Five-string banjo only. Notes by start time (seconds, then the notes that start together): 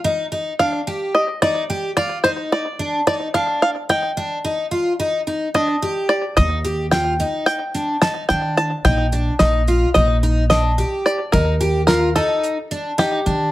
0.59 F5
1.15 D#5
1.42 D5
1.97 D5
2.24 C5
2.52 D5
3.07 D5
3.34 F5
3.62 F5
3.90 G5
5.55 D#5
6.09 D5
6.37 D#5
6.91 G5
7.46 G5
8.02 A5
8.29 G5
8.57 A5
8.85 G5
9.39 D#5
9.94 D#5
10.50 D#5
11.06 D5
11.32 A#4
11.87 A#4
12.16 A4
12.99 G4